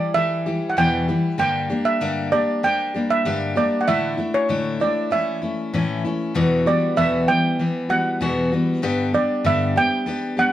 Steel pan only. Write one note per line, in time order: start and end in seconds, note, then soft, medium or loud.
0.00 0.13 D5 medium
0.14 0.66 E5 medium
0.70 0.77 F#5 medium
0.78 1.21 G5 medium
1.39 1.87 G5 medium
1.85 2.28 E5 medium
2.32 2.64 D5 medium
2.64 3.11 G5 medium
3.10 3.57 E5 medium
3.57 3.81 D5 medium
3.81 3.87 F#5 medium
3.88 4.30 E5 medium
4.34 4.81 C#5 medium
4.81 5.12 D5 medium
5.12 6.00 E5 medium
6.67 6.95 D5 medium
6.97 7.29 E5 medium
7.28 7.92 G5 medium
7.90 8.48 F#5 medium
9.14 9.46 D5 medium
9.46 9.74 E5 medium
9.78 10.41 G5 medium
10.39 10.53 F#5 medium